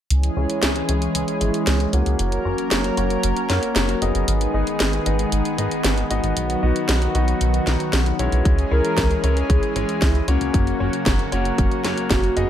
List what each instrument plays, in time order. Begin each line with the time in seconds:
0.10 analog synth bass C#2, analog synth pad E3 G#3 C#4 G#4, closed hi-hat
0.23 closed hi-hat
0.37 analog synth bass C#2, grand piano G#3 C#4 E4 C#5
0.50 closed hi-hat
0.63 analog synth bass C#2, snare, closed hi-hat
0.76 closed hi-hat
0.89 analog synth bass C#2, grand piano G#3 C#4 E4 C#5, closed hi-hat
1.02 closed hi-hat
1.15 analog synth bass C#2, closed hi-hat
1.28 closed hi-hat
1.41 analog synth bass G#1, grand piano G#3 C#4 E4 C#5, closed hi-hat
1.54 closed hi-hat
1.67 analog synth bass C#2, snare, closed hi-hat
1.80 closed hi-hat
1.93 analog synth bass C#2, grand piano A#3 C#4 F#4 C#5, closed hi-hat
2.06 analog synth bass C#2, closed hi-hat
2.19 analog synth bass F#1, analog synth pad F#3 A#3 C#4 A#4, closed hi-hat
2.32 closed hi-hat
2.45 analog synth bass F#1, grand piano A#3 C#4 F#4 C#5
2.58 closed hi-hat
2.71 analog synth bass F#1, snare, closed hi-hat
2.84 closed hi-hat
2.97 analog synth bass F#1, grand piano A#3 C#4 F#4 C#5, closed hi-hat
3.10 closed hi-hat
3.23 analog synth bass F#1, closed hi-hat
3.37 closed hi-hat
3.50 analog synth bass F#2, grand piano A#3 C#4 F#4 C#5, snare, closed hi-hat
3.63 closed hi-hat
3.76 analog synth bass F#1, snare, closed hi-hat
3.89 closed hi-hat
4.02 analog synth bass F#1, grand piano B3 D#4 G#4 D#5, closed hi-hat
4.15 analog synth bass F#1, closed hi-hat
4.28 analog synth bass G#1, analog synth pad D#3 G#3 B3 G#4, closed hi-hat
4.41 closed hi-hat
4.54 analog synth bass G#1, grand piano B3 D#4 G#4 D#5
4.67 closed hi-hat
4.80 analog synth bass G#1, snare, closed hi-hat
4.93 closed hi-hat
5.06 analog synth bass G#1, grand piano B3 D#4 G#4 D#5, closed hi-hat
5.19 closed hi-hat
5.32 analog synth bass G#1, closed hi-hat
5.45 closed hi-hat
5.58 analog synth bass G#2, grand piano B3 D#4 G#4 D#5, closed hi-hat
5.71 closed hi-hat
5.84 analog synth bass G#1, snare, closed hi-hat
5.98 closed hi-hat
6.11 analog synth bass G#1, grand piano B3 D#4 F#4 D#5, closed hi-hat
6.24 analog synth bass G#1, closed hi-hat
6.37 analog synth bass B1, analog synth pad D#3 F#3 F#4, closed hi-hat
6.50 closed hi-hat
6.63 analog synth bass B1, grand piano B3 D#4 F#4 D#5
6.76 closed hi-hat
6.89 analog synth bass B1, snare, closed hi-hat
7.02 closed hi-hat
7.15 analog synth bass B1, grand piano B3 D#4 F#4 D#5, closed hi-hat
7.28 closed hi-hat
7.41 analog synth bass B1, closed hi-hat
7.54 closed hi-hat
7.67 analog synth bass B1, grand piano B3 D#4 F#4 F#5, snare, closed hi-hat
7.80 closed hi-hat
7.93 analog synth bass B1, snare, closed hi-hat
8.06 closed hi-hat
8.19 analog synth bass B1, grand piano G#3 C#4 E4 C#5, closed hi-hat
8.32 analog synth bass B1, closed hi-hat
8.45 analog synth bass C#2, analog synth pad E3 G#3 C#4 G#4, kick, closed hi-hat
8.59 closed hi-hat
8.71 analog synth bass C#2, grand piano G#3 C#4 E4 C#5, analog polysynth A#4
8.85 closed hi-hat
8.98 analog synth bass C#2, kick, snare, closed hi-hat
9.11 closed hi-hat
9.24 analog synth bass C#2, grand piano G#3 C#4 E4 C#5, closed hi-hat
9.37 closed hi-hat
9.50 analog synth bass C#2, analog polysynth G#4, kick, closed hi-hat
9.63 closed hi-hat
9.76 analog synth bass G#1, grand piano G#3 C#4 E4 C#5, closed hi-hat
9.89 closed hi-hat
10.02 analog synth bass C#2, analog polysynth E4, kick, snare, closed hi-hat
10.15 closed hi-hat
10.28 analog synth bass C#2, grand piano A#3 C#4 F#4 C#5, analog polysynth C#4, closed hi-hat
10.41 analog synth bass C#2, closed hi-hat
10.54 analog synth bass F#1, analog synth pad C#3 F#3 A#3 F#4, kick, closed hi-hat
10.67 closed hi-hat
10.80 analog synth bass F#1, grand piano A#3 C#4 F#4 C#5
10.93 closed hi-hat
11.06 analog synth bass F#1, kick, snare, closed hi-hat
11.19 closed hi-hat
11.32 analog synth bass F#1, grand piano A#3 C#4 F#4 C#5, closed hi-hat
11.45 closed hi-hat
11.58 analog synth bass F#1, kick, closed hi-hat
11.72 closed hi-hat
11.85 analog synth bass F#2, grand piano A#3 C#4 F#4 C#5, snare, closed hi-hat
11.98 closed hi-hat
12.11 analog synth bass F#1, analog polysynth F#4, kick, snare, closed hi-hat
12.24 closed hi-hat
12.37 analog synth bass F#1, grand piano B3 D#4 G#4 D#5, closed hi-hat